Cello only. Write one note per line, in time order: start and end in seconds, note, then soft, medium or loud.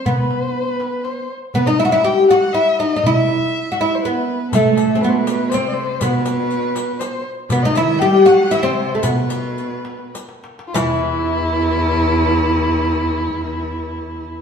4.52 5.03 A2 medium
5.01 5.52 B2 medium
5.50 6.02 C3 medium
6.01 7.25 B2 medium
7.50 7.64 B2 medium
7.63 8.01 D#3 medium
7.99 8.27 G3 loud
8.25 8.52 F#3 medium
8.51 8.65 E3 medium
8.63 9.03 C3 medium
9.03 10.10 B2 medium
10.75 14.42 E2 medium